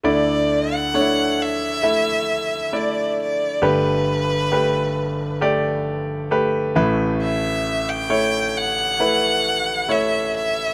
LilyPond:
<<
  \new Staff \with { instrumentName = "Violin" } { \time 4/4 \key d \major \tempo 4 = 67 d''8. fis''8. e''4. d''8 d''8 | b'2 r2 | e''8. g''8. fis''4. e''8 e''8 | }
  \new Staff \with { instrumentName = "Grand piano" } { \time 4/4 \key d \major <a e' d''>4 <a d' e' cis''>4 <a e' e''>4 <a e' d''>4 | <a g' b'>4 <a g' b'>4 <a g' d''>4 <a g' b'>8 <a e' b'>8~ | <a e' b'>4 <a e' cis''>4 <a e' b'>4 <a e' cis''>4 | }
  \new Staff \with { instrumentName = "Grand piano" } { \clef bass \time 4/4 \key d \major <d, d>1 | <g,, g,>2.~ <g,, g,>8 <a,, a,>8~ | <a,, a,>2.~ <a,, a,>8 r8 | }
>>